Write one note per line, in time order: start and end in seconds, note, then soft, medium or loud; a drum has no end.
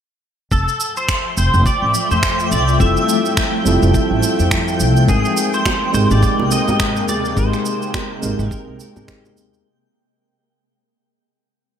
0.51 0.65 F1 medium
0.51 5.04 F3 medium
0.51 5.04 A3 medium
0.51 0.94 A4 medium
0.51 5.05 E5 medium
0.51 9.62 G5 medium
0.51 9.67 G5 medium
0.51 kick loud
0.51 shaker soft
0.68 shaker soft
0.80 shaker medium
0.97 1.35 C5 medium
0.97 shaker soft
1.09 finger snap medium
1.09 kick loud
1.09 shaker soft
1.37 1.51 F1 medium
1.37 1.66 C5 medium
1.37 shaker medium
1.54 1.64 F1 medium
1.54 shaker soft
1.66 2.11 D5 medium
1.66 kick medium
1.66 shaker soft
1.82 1.92 A1 medium
1.94 shaker medium
2.11 2.53 F2 medium
2.11 2.51 C5 loud
2.11 shaker soft
2.23 finger snap medium
2.23 kick loud
2.23 shaker soft
2.40 shaker soft
2.51 2.76 C2 medium
2.51 2.78 D5 medium
2.51 shaker medium
2.68 shaker soft
2.78 2.94 F1 medium
2.78 3.62 G3 medium
2.78 3.62 C4 medium
2.78 3.63 E4 medium
2.78 3.63 F4 medium
2.78 3.64 A4 medium
2.78 4.47 E5 loud
2.78 kick loud
2.78 shaker soft
2.97 shaker soft
3.09 shaker medium
3.26 shaker soft
3.37 finger snap medium
3.37 kick loud
3.37 shaker soft
3.64 3.79 F1 medium
3.64 5.05 G3 medium
3.64 5.05 C4 medium
3.64 5.06 E4 medium
3.64 5.06 F4 medium
3.64 5.07 A4 medium
3.64 shaker medium
3.83 3.92 F1 medium
3.83 shaker soft
3.94 kick loud
3.94 shaker soft
4.11 4.21 A1 medium
4.23 shaker medium
4.39 4.82 F2 medium
4.39 shaker soft
4.51 finger snap loud
4.51 kick medium
4.51 shaker soft
4.68 shaker soft
4.80 5.04 C2 medium
4.80 shaker medium
4.97 shaker soft
5.07 5.22 G#1 medium
5.07 9.62 C3 medium
5.07 5.90 G#3 medium
5.07 9.62 G#3 medium
5.07 9.62 A#3 medium
5.07 5.91 C4 medium
5.07 5.91 D#4 medium
5.07 5.55 G#4 medium
5.07 5.92 A#4 medium
5.07 5.92 G5 medium
5.07 kick loud
5.07 shaker soft
5.25 shaker soft
5.37 shaker medium
5.54 5.93 C5 medium
5.54 shaker soft
5.66 finger snap loud
5.66 kick loud
5.66 high bongo medium
5.66 shaker soft
5.92 6.08 G#1 medium
5.92 7.33 G#3 medium
5.92 7.34 C4 medium
5.92 7.34 D#4 medium
5.92 7.35 G4 medium
5.92 7.35 A#4 loud
5.92 6.11 C5 medium
5.92 shaker medium
6.11 6.21 G#1 medium
6.11 6.52 D5 loud
6.11 shaker soft
6.23 kick loud
6.23 shaker soft
6.39 6.49 C2 medium
6.39 high bongo soft
6.51 7.09 D#5 loud
6.51 shaker medium
6.68 7.09 G#2 medium
6.68 high bongo medium
6.68 shaker soft
6.80 finger snap loud
6.80 kick loud
6.80 shaker soft
6.97 shaker soft
7.09 7.33 D#2 medium
7.09 7.38 D5 medium
7.09 high bongo soft
7.09 shaker medium
7.25 shaker soft
7.35 7.50 G#1 medium
7.35 8.19 G#3 medium
7.35 8.19 C4 medium
7.35 8.20 D#4 medium
7.35 8.20 G4 medium
7.35 8.21 A#4 medium
7.35 8.48 C5 medium
7.35 kick loud
7.35 shaker soft
7.53 finger snap soft
7.53 shaker soft
7.66 shaker medium
7.82 shaker soft
7.94 finger snap loud
7.94 kick loud
7.94 high bongo medium
7.94 shaker soft
8.21 8.36 G#1 medium
8.21 9.05 G#3 medium
8.21 9.06 C4 medium
8.21 9.06 D#4 medium
8.21 9.07 G4 medium
8.21 9.07 A#4 medium
8.21 shaker medium
8.39 8.49 G#1 loud
8.39 shaker soft
8.48 9.05 A#4 medium
8.48 kick loud
8.48 shaker soft
8.68 8.78 C2 medium
8.80 shaker medium
8.96 9.37 G#2 medium
8.96 high bongo medium
8.96 shaker soft
9.07 9.62 G#3 medium
9.07 9.62 C4 medium
9.07 9.63 D#4 medium
9.07 9.63 G4 medium
9.07 9.63 A#4 loud
9.07 finger snap medium
9.07 kick loud
9.07 shaker soft
9.25 high bongo soft
9.25 shaker soft
9.37 9.61 D#2 medium
9.37 shaker medium
9.54 high bongo soft
9.54 shaker soft